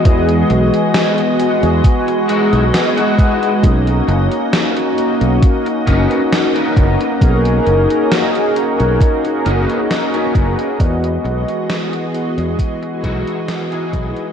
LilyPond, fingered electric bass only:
\new Staff \with { instrumentName = "Fingered electric bass" } { \clef bass \time 4/4 \key e \lydian \tempo 4 = 67 e,8 b,,16 r4 e,16 r8. b,,16 r4 | b,,8 fis,,16 r4 b,,16 r8 fis,,16 r8. fis,,16 r16 | b,,8 fis,,16 r4 b,,16 r8 fis,,16 r8. fis,,16 r16 | e,8 b,,16 r4 e,16 r8 b,,16 r8. b,,16 r16 | }